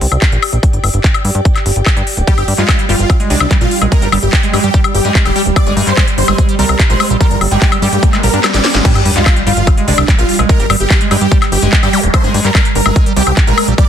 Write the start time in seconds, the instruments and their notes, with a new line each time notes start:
Already playing: ambient pad G4 D5 G5
0.01 analog synth bass C2, open hi-hat
0.12 analog synth bass C2, closed hi-hat, high woodblock
0.22 kick, clap, closed hi-hat
0.32 analog synth bass A#1, closed hi-hat
0.42 open hi-hat, high woodblock
0.53 analog synth bass A#1, closed hi-hat
0.63 kick, closed hi-hat
0.73 analog synth bass G1, closed hi-hat
0.84 analog synth bass G1, open hi-hat, high woodblock
0.94 analog synth bass G1, closed hi-hat
1.04 kick, clap, closed hi-hat
1.14 closed hi-hat, high woodblock
1.25 analog synth bass G2, open hi-hat
1.35 analog synth bass G2, closed hi-hat
1.45 kick, closed hi-hat
1.55 clap, closed hi-hat, high woodblock
1.66 analog synth bass G1, open hi-hat
1.76 analog synth bass G1, closed hi-hat
1.86 kick, clap, closed hi-hat, high woodblock
1.97 analog synth bass G2, closed hi-hat
2.07 open hi-hat
2.17 analog synth bass D1, closed hi-hat
2.27 synth texture G3, acid bass G3, supersaw synth G4, kick, closed hi-hat
2.38 analog synth bass G1, closed hi-hat, high woodblock
2.48 analog synth bass G2, open hi-hat
2.58 analog synth bass G2, acid bass G#3, supersaw synth F4, clap, closed hi-hat
2.69 kick, clap, closed hi-hat, high woodblock
2.79 acid bass G3, closed hi-hat
2.89 analog synth bass G1, acid bass G3, supersaw synth F4, open hi-hat
2.99 analog synth bass G1, closed hi-hat
3.10 kick, closed hi-hat, high woodblock
3.20 acid bass G#3, closed hi-hat
3.30 analog synth bass C2, acid bass G#3, supersaw synth D4, open hi-hat
3.40 analog synth bass C2, acid bass G3, closed hi-hat, high woodblock
3.51 acid bass G3, kick, clap, closed hi-hat
3.61 analog synth bass A#1, supersaw synth F4, closed hi-hat
3.71 open hi-hat
3.82 analog synth bass A#1, acid bass G#3, closed hi-hat, high woodblock
3.92 acid bass G#3, supersaw synth A#4, kick, closed hi-hat
4.02 analog synth bass G1, acid bass G3, closed hi-hat
4.12 analog synth bass G1, acid bass G3, open hi-hat, high woodblock
4.23 analog synth bass G1, supersaw synth G4, closed hi-hat
4.33 kick, clap, closed hi-hat
4.43 acid bass G#3, closed hi-hat
4.53 analog synth bass G2, acid bass G#3, supersaw synth G4, open hi-hat, high woodblock
4.64 analog synth bass G2, acid bass G3, closed hi-hat
4.74 acid bass G3, kick, closed hi-hat
4.84 closed hi-hat, high woodblock
4.95 analog synth bass G1, supersaw synth G4, open hi-hat
5.05 analog synth bass G2, acid bass G#3, closed hi-hat
5.15 acid bass G#3, kick, clap, closed hi-hat
5.25 analog synth bass D1, acid bass G3, supersaw synth G4, closed hi-hat, high woodblock
5.36 acid bass G3, open hi-hat
5.46 analog synth bass D1, closed hi-hat
5.56 supersaw synth D5, kick, closed hi-hat, riser, high woodblock
5.66 analog synth bass G1, acid bass G#3, closed hi-hat
5.77 analog synth bass G2, acid bass G#3, open hi-hat
5.87 analog synth bass G2, acid bass G3, supersaw synth C5, clap, closed hi-hat
5.97 acid bass G3, kick, clap, closed hi-hat, high woodblock
6.08 closed hi-hat
6.18 analog synth bass G1, supersaw synth C5, open hi-hat
6.28 analog synth bass G1, acid bass G#3, closed hi-hat, high woodblock
6.38 acid bass G#3, kick, closed hi-hat
6.49 acid bass G3, closed hi-hat
6.59 analog synth bass C2, acid bass G3, supersaw synth A#4, open hi-hat
6.69 analog synth bass C2, closed hi-hat, high woodblock
6.79 kick, clap, closed hi-hat
6.90 analog synth bass A#1, acid bass G#3, supersaw synth C5, closed hi-hat
7.00 acid bass G#3, open hi-hat, high woodblock
7.10 analog synth bass A#1, acid bass G3, closed hi-hat
7.21 acid bass G3, supersaw synth A#4, kick, closed hi-hat
7.31 analog synth bass G1, closed hi-hat
7.41 analog synth bass G1, open hi-hat, high woodblock
7.51 analog synth bass G1, acid bass G#3, supersaw synth G4, closed hi-hat
7.62 acid bass G#3, kick, clap, closed hi-hat
7.72 acid bass G3, closed hi-hat, high woodblock
7.82 analog synth bass G2, acid bass G3, supersaw synth G4, open hi-hat
7.92 analog synth bass G2, closed hi-hat
8.03 kick, closed hi-hat
8.13 acid bass G#3, clap, closed hi-hat, high woodblock
8.23 analog synth bass A#1, acid bass G3, supersaw synth A#4, open hi-hat
8.34 analog synth bass G2, acid bass D4, closed hi-hat
8.44 acid bass G3, snare, clap, closed hi-hat, high woodblock
8.54 analog synth bass G#1, acid bass G3, supersaw synth D5, snare, closed hi-hat
8.64 snare, open hi-hat
8.75 analog synth bass G#1, acid bass G#3, snare, closed hi-hat
8.85 synth texture G3, acid bass G3, supersaw synth G4, kick, closed hi-hat, crash, sub drop
8.95 analog synth bass G1, closed hi-hat, high woodblock
9.05 analog synth bass G2, open hi-hat
9.16 analog synth bass G2, acid bass G#3, supersaw synth F4, clap, closed hi-hat
9.26 acid bass G#3, kick, clap, closed hi-hat, high woodblock
9.36 acid bass G3, closed hi-hat
9.47 analog synth bass G1, acid bass G3, supersaw synth F4, open hi-hat
9.57 analog synth bass G1, closed hi-hat
9.67 kick, closed hi-hat, high woodblock
9.77 acid bass G#3, closed hi-hat
9.88 analog synth bass C2, acid bass G#3, supersaw synth D4, open hi-hat
9.98 analog synth bass C2, acid bass G3, closed hi-hat, high woodblock
10.08 acid bass G3, kick, clap, closed hi-hat
10.18 analog synth bass A#1, supersaw synth F4, closed hi-hat
10.29 open hi-hat
10.39 analog synth bass A#1, acid bass G#3, closed hi-hat, high woodblock
10.49 acid bass G#3, supersaw synth A#4, kick, closed hi-hat
10.60 analog synth bass G1, acid bass G3, closed hi-hat
10.70 analog synth bass G1, acid bass G3, open hi-hat, high woodblock
10.80 analog synth bass G1, supersaw synth G4, closed hi-hat
10.90 kick, clap, closed hi-hat
11.01 acid bass G#3, closed hi-hat
11.11 analog synth bass G2, acid bass G#3, supersaw synth G4, open hi-hat, high woodblock
11.21 analog synth bass G2, acid bass G3, closed hi-hat
11.32 acid bass G3, kick, closed hi-hat
11.42 clap, closed hi-hat, high woodblock
11.52 analog synth bass G1, supersaw synth G4, open hi-hat
11.62 analog synth bass G1, acid bass G#3, closed hi-hat
11.73 acid bass G#3, kick, clap, closed hi-hat
11.83 analog synth bass G2, acid bass G3, supersaw synth G4, closed hi-hat, high woodblock
11.93 acid bass G3, open hi-hat, zap
12.03 analog synth bass D1, closed hi-hat
12.14 supersaw synth C5, kick, closed hi-hat, high woodblock
12.24 analog synth bass G1, acid bass G#3, closed hi-hat
12.34 analog synth bass G2, acid bass G#3, open hi-hat
12.45 analog synth bass G2, acid bass G3, supersaw synth A#4, clap, closed hi-hat
12.55 acid bass G3, kick, clap, closed hi-hat, high woodblock
12.65 closed hi-hat
12.75 analog synth bass G1, supersaw synth A#4, open hi-hat
12.86 analog synth bass G1, acid bass G#3, closed hi-hat, high woodblock
12.96 acid bass G#3, kick, closed hi-hat
13.06 acid bass G3, closed hi-hat
13.16 analog synth bass C2, acid bass G3, supersaw synth G4, open hi-hat
13.27 analog synth bass C2, closed hi-hat, high woodblock
13.37 kick, clap, closed hi-hat
13.47 analog synth bass A#1, acid bass G#3, supersaw synth A#4, closed hi-hat
13.58 acid bass G#3, open hi-hat, high woodblock
13.68 analog synth bass A#1, acid bass G3, closed hi-hat
13.78 acid bass G3, supersaw synth D5, kick, closed hi-hat